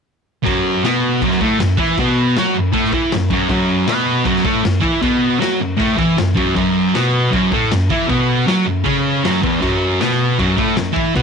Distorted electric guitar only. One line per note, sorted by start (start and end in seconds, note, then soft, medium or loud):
0.44 0.82 F#2 medium
0.44 0.83 F#3 loud
0.83 1.21 B2 medium
0.83 1.22 B3 loud
1.21 1.40 F#2 loud
1.21 1.41 F#3 loud
1.41 1.59 A2 medium
1.41 1.60 A3 loud
1.58 1.74 F#2 medium
1.77 1.97 E3 medium
1.77 1.98 E4 loud
1.98 2.36 B2 loud
1.98 2.37 B3 loud
2.38 2.56 F#3 medium
2.38 2.56 F#4 loud
2.54 2.70 F#2 medium
2.72 2.92 A2 loud
2.72 2.92 A3 loud
2.93 3.12 E3 medium
2.93 3.12 E4 loud
3.12 3.28 F#2 medium
3.30 3.48 F#2 medium
3.30 3.49 F#3 loud
3.49 3.87 F#2 loud
3.49 3.88 F#3 loud
3.87 4.25 B2 loud
3.87 4.26 B3 loud
4.24 4.44 F#2 loud
4.24 4.45 F#3 loud
4.44 4.63 A2 medium
4.44 4.64 A3 loud
4.64 4.79 F#2 medium
4.81 5.01 E3 medium
4.81 5.02 E4 loud
5.01 5.39 B2 loud
5.01 5.39 B3 loud
5.39 5.59 F#3 medium
5.39 5.59 F#4 loud
5.59 5.75 F#2 medium
5.76 5.96 A2 loud
5.76 5.97 A3 loud
5.97 6.16 E3 loud
5.97 6.17 E4 loud
6.18 6.33 F#2 medium
6.35 6.54 F#2 medium
6.35 6.55 F#3 loud
6.55 6.93 F#2 loud
6.55 6.94 F#3 loud
6.94 7.31 B2 medium
6.94 7.32 B3 loud
7.30 7.49 F#2 loud
7.30 7.50 F#3 loud
7.52 7.70 A2 loud
7.52 7.71 A3 loud
7.71 7.86 F#2 medium
7.90 8.07 E3 medium
7.90 8.09 E4 medium
8.08 8.46 B2 loud
8.08 8.47 B3 loud
8.47 8.65 F#3 loud
8.47 8.66 F#4 loud
8.65 8.81 F#2 medium
8.84 9.22 C#3 loud
8.84 9.22 C#4 loud
9.24 9.42 F#2 medium
9.24 9.42 F#3 loud
9.43 9.61 E2 medium
9.43 9.61 E3 medium
9.61 9.99 F#2 medium
9.61 9.99 F#3 loud
9.99 10.37 B2 loud
9.99 10.38 B3 loud
10.39 10.57 F#2 loud
10.39 10.57 F#3 loud
10.56 10.75 A2 medium
10.56 10.76 A3 loud
10.76 10.92 F#2 medium
10.93 11.13 E3 medium
10.93 11.13 E4 medium
11.15 11.22 B2 medium
11.15 11.22 B3 loud